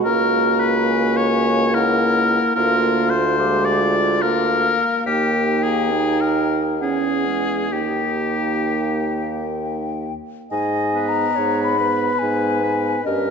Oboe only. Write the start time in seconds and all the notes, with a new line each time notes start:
0.05 A#4
0.60 B4
1.17 C#5
1.75 A#4
2.55 A#4
3.10 C5
3.65 D5
4.22 A#4
5.06 G4
5.63 G#4
6.21 A#4
6.82 G#4
7.73 G4
10.95 B4
11.79 B4
12.63 B4
13.06 A#4